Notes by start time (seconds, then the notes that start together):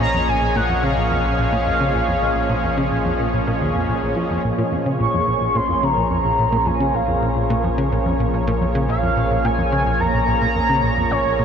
Already playing: A#1 A#2 F3 A#3 C#4 G#4 C#5 D#5
0.00 A#1 A#5
0.14 F2
0.28 A#1 G#5
0.42 A#1
0.56 A#2 F#5
0.70 F2
0.76 F#5
0.83 C#3 F5
0.97 A#1
1.11 F2
1.25 A#1
1.39 A#1
1.53 A#2
1.67 F2
1.80 C#3
1.94 A#1
2.08 F2
2.22 A#1
2.36 A#1
2.50 A#2
2.64 F2
2.78 C#3
2.92 A#1
3.05 F2
3.20 A#1
3.33 A#1
3.47 A#2
3.61 D#2
3.75 F2
3.89 A#1
4.03 A#1
4.17 F3
4.31 F2
4.44 A#1 A#3 A#4
4.58 A#2
4.65 C#5
4.72 F2
4.86 C#3
5.00 A#1 C#6
5.14 F2
5.27 A#1
5.41 A#1
5.55 A#2 C6
5.69 F2
5.83 C#3 A#5
5.97 A#1
6.11 F2
6.25 A#1
6.39 A#1
6.52 A#2
6.66 F2 G#5
6.80 C#3
6.94 A#1 F5
7.08 F2
7.22 A#1
7.36 A#1
7.50 A#2
7.64 F2
7.78 C#3
7.92 A#1
8.06 F2
8.20 A#1
8.34 A#1
8.47 A#2
8.61 F2
8.75 C#3
8.89 A#1 F5
9.03 F2
9.17 A#1
9.31 A#1
9.45 A#2 G#5
9.58 F2
9.72 C#3
9.86 A#1
10.00 F2 A#5
10.14 A#1
10.28 A#1
10.42 A#2
10.56 F2
10.69 C#3
10.83 A#1
10.97 F2
11.11 A#1 C#5
11.25 A#1
11.39 A#2